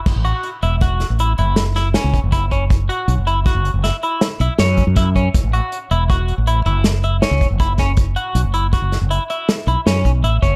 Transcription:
<<
  \new Staff \with { instrumentName = "Clean electric guitar" } { \time 7/4 \key fis \minor \tempo 4 = 159 r8 fis'4 e'8 fis'4 e'8 e'4 e'8 cis'4 e'8 cis'8 | r8 fis'4 e'8 fis'4 e'8 e'4 e'8 cis'4 e'8 cis'8 | r8 fis'4 e'8 fis'4 e'8 e'4 e'8 cis'4 e'8 cis'8 | r8 fis'4 e'8 fis'4 e'8 e'4 e'8 cis'4 e'8 cis'8 | }
  \new Staff \with { instrumentName = "Fretless electric bass" } { \clef bass \time 7/4 \key fis \minor fis,,16 a,,8 r8. e,,4~ e,,16 a,,8. fis,,4.~ fis,,16 cis,16 e,,16 fis,,4~ fis,,16~ | fis,,8. r16 b,,16 fis,,4 fis,,8 fis,,8 r4 r16 b,,16 r16 fis,8. fis,4~ fis,16 | fis,,16 a,,8 r8. e,,4~ e,,16 a,,8. fis,,4.~ fis,,16 cis,16 e,,16 fis,,4~ fis,,16~ | fis,,8. r16 b,,16 fis,,4 fis,,8 fis,,8 r4 r16 b,,16 r16 fis,8 b,,8 a,,8 fis,,8 | }
  \new DrumStaff \with { instrumentName = "Drums" } \drummode { \time 7/4 <cymc bd>8 hh8 hh8 hh8 <hh bd>8 <hh sn>8 hh8 hh8 <hh sn>8 <hh sn>8 <hh sn>8 <hh bd>8 <hh bd>8 <hh bd>8 | <hh bd>8 hh8 hh8 hh8 <hh bd>8 hh8 <hh sn>8 hh8 <hh sn>8 hh8 <hh sn>8 <hh bd>8 <hh bd>8 <hh bd>8 | <hh bd>8 hh8 hh8 hh8 <hh bd>8 hh8 hh8 hh8 <hh sn>8 hh8 <hh sn>8 <hh bd>8 <hh bd>8 <hh bd sn>8 | <hh bd>8 hh8 hh8 hh8 <hh bd>8 <hh sn>8 hh8 hh8 <hh sn>8 hh8 <hh sn>8 <hh bd>8 hh8 <hh bd>8 | }
>>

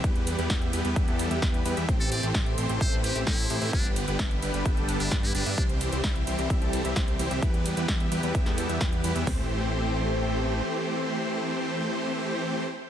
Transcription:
<<
  \new Staff \with { instrumentName = "Muted trumpet" } { \time 4/4 \key a \minor \tempo 4 = 130 r1 | r16 a'16 d''16 r4 r16 c''16 r16 g'16 r16 e'4 | d'16 r2 r8 d'16 r16 e'16 d'8 | r1 |
r1 | r1 | r1 | }
  \new Staff \with { instrumentName = "Analog synth pad" } { \time 4/4 \key a \minor <e b g'>1 | <a c''>1 | <g d' b'>1 | <c g e'>1 |
<e b g'>1 | <a g' c''>1~ | <a g' c''>1 | }
  \new Staff \with { instrumentName = "Supersaw synth" } { \time 4/4 \key a \minor <g b g' b'>8. <e g b g' b'>16 <e g b>8 <e g b g' b'>16 <e g b g' b'>16 <e g b g' e''>16 <e g b g' a'>8 <e g b g' e''>16 <e g b b'>8 <e g b g' b'>16 <e g b g' e''>16 | <e a c' g' c''>8. <e a c' g' c''>16 <e a e''>8 <e a c' g' c''>16 <e a c' g' c''>16 <e a c' g' e''>16 <e a c' g' b'>8 <e a c' g' e''>16 <e c' c''>8 <e a c' g' c''>16 <e a c' g' e''>16 | <d g b g' b'>8. <d g b g' b'>16 e''8 <d g b g' b'>16 <d g b g' b'>16 <d g g' e''>16 <d g b g' a'>8 <d g b g' e''>16 <g b g' b'>8 <d g b g' b'>16 <d g b g' e''>16 | <e g c' g' c''>8. <e g c' g' c''>16 <e g c'>8 <e g c' g' c''>16 <e g c' g' c''>16 <e g c' g' e''>16 <e g c' g' a'>8 <e g c' g' e''>16 <e g c' c''>8 <e g c' g' c''>16 <e g c' g' e''>16 |
<e g b g' b'>8. <e g b g' b'>16 r8 <e g b g' b'>16 <e g b g' b'>16 <e g g'>16 <e g b g' a'>8 <e g b g' e''>16 r8 <e g b g' b'>16 <e g b g' e''>16 | <e c' c''>1~ | <e c' c''>1 | }
  \new Staff \with { instrumentName = "Analog synth bass" } { \clef bass \time 4/4 \key a \minor e,8. e,16 e,8 e,16 e,16 e,16 e,8 e,16 e,8 e,16 e,16 | a,,8. a,,16 a,,8 a,,16 a,,16 a,,16 a,,8 a,,16 a,8 a,16 a,16 | g,,8. g,,16 g,,8 g,,16 g,,16 g,,16 g,,8 g,,16 g,8 g,,16 g,16 | c,8. c,16 c,8 c,16 c,16 c,16 c,8 c,16 c,8 c,16 c,16 |
e,8. e,16 e,8 e,16 e,16 e,16 e,8 e,16 e,8 e,16 e,16 | a,,2. r4 | r1 | }
  \new DrumStaff \with { instrumentName = "Drums" } \drummode { \time 4/4 <hh bd>16 hh16 <hho cymr>16 hh16 <hh bd sn>16 hh16 <hho cymr>16 hh16 <hh bd>16 hh16 <hho cymr>16 hh16 <hh bd sn>16 hh16 <hho cymr>16 hh16 | <hh bd>16 hh16 <hho cymr>16 hh16 <hh bd sn>16 hh16 <hho cymr>16 hh16 <hh bd>16 hh16 <hho cymr>16 hh16 <hh bd sn>16 hh16 <hho cymr>16 hh16 | <hh bd>16 hh16 <hho cymr>16 hh16 <hh bd sn>16 hh16 <hho cymr>16 hh16 <hh bd>16 hh16 <hho cymr>16 hh16 <hh bd sn>16 hh16 <hho cymr>16 hh16 | <hh bd>16 hh16 <hho cymr>16 hh16 <hh bd sn>16 hh16 <hho cymr>16 hh16 <hh bd>16 hh16 <hho cymr>16 hh16 <hh bd sn>16 hh16 <hho cymr>16 hh16 |
<hh bd>16 hh16 <hho cymr>16 hh16 <hh bd sn>16 hh16 <hho cymr>16 hh16 <hh bd>16 <hh sn>16 <hho cymr>16 hh16 <hh bd sn>16 hh16 <hho cymr>16 hh16 | <hho bd tomfh>4 r4 r4 r4 | r4 r4 r4 r4 | }
>>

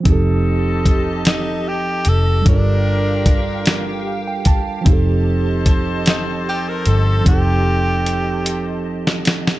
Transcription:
<<
  \new Staff \with { instrumentName = "Analog synth pad" } { \time 6/8 \key f \mixolydian \tempo 4. = 50 << { <ees'' a''>2. | <f'' g''>2. | <ees'' a''>2.~ | <ees'' a''>2. | } \\ { g'2. | g'2.~ | g'2.~ | g'2. | } >> }
  \new Staff \with { instrumentName = "Horn section" } { \time 6/8 \key f \mixolydian <c' ees' a'>2~ <c' ees' a'>8 r8 | <f' g' bes'>2~ <f' g' bes'>8 r8 | <g' a' c''>2.~ | <g' a' c''>2~ <g' a' c''>8 r8 | }
  \new Staff \with { instrumentName = "Tenor saxophone" } { \time 6/8 \key f \mixolydian r4. ees'8 g'8 a'8 | d'2 r4 | r4. ees'8 g'16 bes'16 a'8 | g'2 r4 | }
  \new Staff \with { instrumentName = "Tine electric piano" } { \time 6/8 \key f \mixolydian << { r2. | r2 f''16 g''16 a''8 | r2. | r2. | } \\ { <f c' ees' g' a'>2. | <g d' f' a' bes'>2. | <f c' ees' g' a'>2. | <f c' ees' g' a'>2. | } >> }
  \new Staff \with { instrumentName = "Fingered electric bass" } { \clef bass \time 6/8 \key f \mixolydian f,,2~ f,,8 f,,8 | g,,2. | f,,2~ f,,8 g,,8 | f,,2. | }
  \new DrumStaff \with { instrumentName = "Drums" } \drummode { \time 6/8 <hh bd>4 <hh bd>8 <hh sn>4 hh8 | <hh bd>4 <hh bd>8 <hh sn>4 <hh bd>8 | <hh bd>4 <hh bd>8 <hh sn>4 hh8 | <hh bd>4 hh8 hh8. sn16 <hh sn>16 sn16 | }
>>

